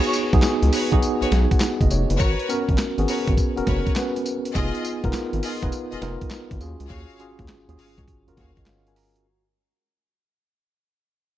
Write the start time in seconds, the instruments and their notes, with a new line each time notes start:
Already playing: tine electric piano B3 D#4 F#4 G#4, string section F#4 B4 C#5
0.04 closed hi-hat
0.13 closed hi-hat, tambourine
0.33 analog synth bass B1, tine electric piano B3 D#4 F#4 G#4, kick, closed hi-hat
0.42 snare, clap, closed hi-hat, tambourine
0.62 analog synth bass C#2, closed hi-hat
0.72 string section F#4 B4 C#5, open hi-hat, tambourine
0.92 analog synth bass B1, tine electric piano B3 D#4 F#4 G#4, kick, closed hi-hat
1.02 closed hi-hat, tambourine
1.21 analog synth bass B1, string section F#4 B4 C#5, closed hi-hat
1.32 analog synth bass B1, snare, closed hi-hat
1.51 tine electric piano F#5, kick, closed hi-hat
1.60 snare, clap, closed hi-hat, tambourine
1.81 analog synth bass F#1, tine electric piano D#5, kick, closed hi-hat
1.91 analog synth bass F1, tine electric piano C#5, closed hi-hat, tambourine
2.10 analog synth bass F#1, tine electric piano B4, closed hi-hat
2.20 analog synth bass G#1, string section F#4 A#4 B4 C#5, kick, closed hi-hat, tambourine
2.39 closed hi-hat
2.49 tine electric piano B3 C#4 F#4 A#4, closed hi-hat, tambourine
2.69 analog synth bass G#1, kick, closed hi-hat
2.78 snare, clap, closed hi-hat, tambourine
2.98 analog synth bass G#1, tine electric piano B3 C#4 F#4 G#4, closed hi-hat
3.08 string section F#4 A#4 B4 C#5, open hi-hat, tambourine
3.28 analog synth bass G#1, kick, closed hi-hat
3.37 kick, closed hi-hat, tambourine
3.56 analog synth bass F#1, tine electric piano B3 C#4 F#4 A#4, closed hi-hat
3.67 analog synth bass F#1, string section F#4 A#4 B4 C#5, kick, snare, closed hi-hat
3.87 kick, closed hi-hat
3.96 tine electric piano B3 C#4 F#4 B4, snare, clap, closed hi-hat, tambourine
4.16 closed hi-hat
4.26 closed hi-hat, tambourine
4.45 closed hi-hat
4.55 analog synth bass F1, tine electric piano B3 D#4 F4 G#4, string section F4 G#4 D#5, kick, closed hi-hat, tambourine
4.75 closed hi-hat
4.85 closed hi-hat, tambourine
5.04 analog synth bass F1, tine electric piano B3 D#4 F4 A#4, kick, closed hi-hat
5.13 snare, clap, closed hi-hat, tambourine
5.33 analog synth bass G#1, closed hi-hat
5.43 string section F4 G#4 D#5, open hi-hat, tambourine
5.62 analog synth bass F1, tine electric piano B3 D#4 F4 B4, kick, closed hi-hat
5.72 closed hi-hat, tambourine
5.92 analog synth bass F1, string section F4 G#4 D#5, closed hi-hat
6.02 analog synth bass F1, tine electric piano B3 D#4 F4 A#4, snare, closed hi-hat
6.21 kick, closed hi-hat
6.31 snare, clap, closed hi-hat, tambourine
6.51 analog synth bass G#1, kick, closed hi-hat
6.61 analog synth bass D#2, tine electric piano C#4 F4 F#4 G#4, closed hi-hat, tambourine
6.80 analog synth bass C#2, closed hi-hat
6.90 analog synth bass D#2, string section F#4 G#4 C#5 F5, kick, closed hi-hat
7.10 closed hi-hat
7.20 tine electric piano C#4 F4 F#4 G#4, closed hi-hat
7.39 analog synth bass D#2, kick, closed hi-hat
7.48 snare, clap, closed hi-hat
7.68 analog synth bass D#2, tine electric piano C#4 F4 F#4 G#4, closed hi-hat
7.78 string section F#4 G#4 C#5 F5, open hi-hat
7.98 analog synth bass C#2, kick, closed hi-hat
8.08 kick, closed hi-hat
8.27 analog synth bass D#2, tine electric piano C#4 F4 F#4 A#4, closed hi-hat
8.37 analog synth bass D#2, string section F#4 G#4 C#5 F5, tine electric piano F#5, kick, snare, closed hi-hat
8.57 tine electric piano D#5, kick, closed hi-hat
8.66 tine electric piano C#5 F5, snare, clap, closed hi-hat
8.87 tine electric piano A#4 G#5, closed hi-hat
8.96 tine electric piano A#5, open hi-hat
9.16 tine electric piano F#4, closed hi-hat